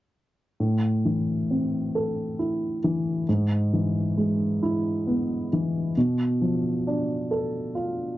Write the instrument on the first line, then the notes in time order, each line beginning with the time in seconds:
grand piano
0.60 A2
1.05 E3
1.51 C4
1.95 A4
2.39 E4
2.84 E3
3.29 G#2
3.73 E3
4.17 G#3
4.63 E4
5.07 B3
5.53 E3
5.97 B2
6.42 F3
6.87 D4
7.31 A4
7.75 F4